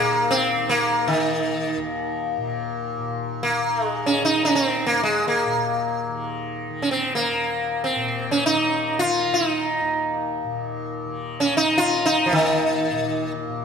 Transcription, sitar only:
Already playing: A#3
0.31 C4
0.69 A#3
1.08 D#3
3.43 A#3
3.86 G#3
4.06 C#4
4.25 D#4
4.45 C#4
4.55 C#4
4.66 C4
4.86 A#3
5.03 G#3
5.28 A#3
6.82 C#4
6.91 C4
7.15 A#3
7.84 C4
8.31 C#4
8.46 D#4
8.99 F4
9.34 D#4
11.40 C#4
11.57 D#4
11.78 F4
12.06 D#4
12.26 F3
12.33 D#3

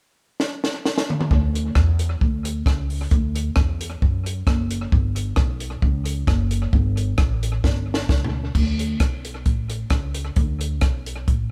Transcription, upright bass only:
1.31 D2
1.76 E2
2.22 D2
2.66 C#2
3.12 D2
3.57 E2
4.02 F#2
4.47 F#1
4.93 G1
5.37 B1
5.83 C#2
6.28 F#1
6.73 G1
7.19 A1
7.64 G1
8.09 C#2
8.55 D2
9.01 B1
9.46 A1
9.91 C#2
10.37 D2
10.82 B1
11.28 A1

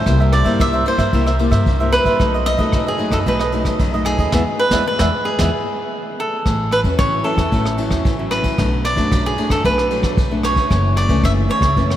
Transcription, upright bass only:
0.06 C2
0.45 G2
0.60 C2
0.98 G2
1.13 C2
1.51 G2
1.66 C2
2.04 A#1
2.20 B1
2.58 F#2
2.73 B1
3.10 F#2
3.27 B1
3.64 F#2
3.80 B1
4.17 D#2
4.33 E2
4.70 E2
5.00 E2
5.39 E2
6.46 A1
6.83 E2
6.99 A1
7.37 E2
7.53 A1
7.90 E2
8.05 A1
8.42 F#2
8.58 B1
8.96 F#2
9.12 B1
9.49 F#2
9.65 B1
10.02 F#2
10.17 B1
10.55 F#2
10.71 F#1
11.08 C#2
11.24 F#1
11.61 C#2
11.77 F#1

